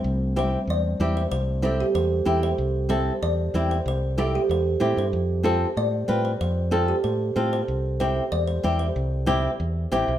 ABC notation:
X:1
M:4/4
L:1/8
Q:1/4=188
K:C
V:1 name="Kalimba"
c2 c2 d3 c | c2 A G c3 c- | c2 c2 d3 c | c2 A G c3 c- |
c2 c2 d3 c | c2 A G c3 c- | c2 c2 d c2 c- | c6 z2 |]
V:2 name="Nylon-string guitar"
z2 [CEG] z3 [CEG] z | z2 [CEG] z3 [CEG] z | z2 [CEA] z3 [CEG] z | z2 [CEG] z3 [CEG] z |
z2 [CFA] z3 [CFB] z | z2 [CFA] z3 [CFA] z | z2 [CEG] z3 [CEG] z | z2 [CEG] z3 [CEG] z |]
V:3 name="Fingered electric bass" clef=bass
C,,4 E,,2 E,,2 | C,,4 E,,2 E,,2 | C,,4 E,,2 E,,2 | C,,4 E,,2 A,, G,, |
F,,4 A,,2 A,,2 | F,,4 A,,2 A,,2 | C,,4 E,,2 E,,2 | C,,4 E,,2 A,,, B,,, |]